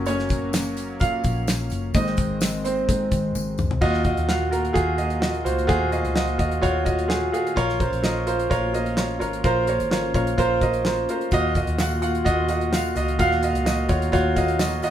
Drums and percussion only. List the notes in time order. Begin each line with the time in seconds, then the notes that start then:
0.06 closed hi-hat, tambourine
0.19 snare
0.29 kick, closed hi-hat, tambourine
0.53 snare, closed hi-hat, tambourine
0.77 closed hi-hat, tambourine
1.00 kick, closed hi-hat, tambourine
1.24 kick, closed hi-hat, tambourine
1.47 snare, closed hi-hat, tambourine
1.70 closed hi-hat, tambourine
1.94 kick, closed hi-hat, tambourine
2.06 snare
2.17 kick, closed hi-hat, tambourine
2.41 snare, closed hi-hat, tambourine
2.65 closed hi-hat, tambourine
2.89 kick, closed hi-hat
3.12 kick, closed hi-hat, tambourine
3.35 high tom, tambourine
3.58 mid tom, tambourine
3.71 floor tom
3.81 kick, crash
3.94 snare
4.04 kick, closed hi-hat
4.17 closed hi-hat
4.29 snare
4.53 closed hi-hat
4.65 closed hi-hat
4.75 kick, closed hi-hat
4.98 closed hi-hat
5.10 closed hi-hat
5.22 snare
5.34 closed hi-hat
5.46 closed hi-hat
5.58 closed hi-hat
5.69 kick, closed hi-hat
5.92 closed hi-hat
6.05 closed hi-hat
6.16 snare
6.27 closed hi-hat
6.39 kick, closed hi-hat
6.51 closed hi-hat
6.63 kick, closed hi-hat
6.86 kick, closed hi-hat
6.99 closed hi-hat
7.10 snare
7.34 closed hi-hat
7.47 closed hi-hat
7.57 kick, closed hi-hat
7.69 snare
7.80 kick, closed hi-hat
7.93 closed hi-hat
8.04 snare
8.27 closed hi-hat
8.39 closed hi-hat
8.51 kick, closed hi-hat
8.74 closed hi-hat
8.86 closed hi-hat
8.97 snare
9.21 closed hi-hat
9.33 closed hi-hat
9.44 kick, closed hi-hat
9.67 closed hi-hat
9.80 closed hi-hat
9.91 snare
10.14 kick, closed hi-hat
10.27 closed hi-hat
10.38 kick, closed hi-hat
10.61 kick, closed hi-hat
10.73 closed hi-hat
10.85 snare
10.96 closed hi-hat
11.09 closed hi-hat
11.21 closed hi-hat
11.31 kick, closed hi-hat, tambourine
11.55 kick, closed hi-hat, tambourine
11.67 closed hi-hat
11.78 snare, tambourine
12.02 closed hi-hat, tambourine
12.15 closed hi-hat
12.26 kick, closed hi-hat, tambourine
12.49 closed hi-hat, tambourine
12.61 closed hi-hat
12.73 snare, tambourine
12.96 closed hi-hat, tambourine
13.08 closed hi-hat
13.19 kick, closed hi-hat, tambourine
13.31 snare
13.42 closed hi-hat, tambourine
13.55 closed hi-hat
13.66 snare, tambourine
13.89 kick, closed hi-hat, tambourine
14.02 closed hi-hat
14.12 kick, closed hi-hat, tambourine
14.36 kick, closed hi-hat, tambourine
14.48 closed hi-hat
14.59 snare, tambourine
14.71 closed hi-hat
14.82 closed hi-hat, tambourine